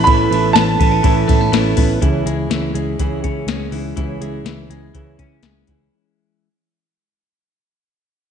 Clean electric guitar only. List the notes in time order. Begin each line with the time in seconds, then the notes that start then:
Already playing: B3 C#4
0.08 E3
0.31 E3
0.56 B3
0.79 B3
0.92 C#4
1.03 E3
1.28 A3
1.41 B3
1.52 E3
1.77 B3
2.02 E3
2.26 G#3
2.50 E3
2.75 G#3
3.00 E3
3.24 C#4
3.48 G#3
3.72 E3
3.97 E3
4.21 G#3
4.45 E3
4.70 G#3
4.94 E3
5.19 C#4
5.44 G#3
5.68 E3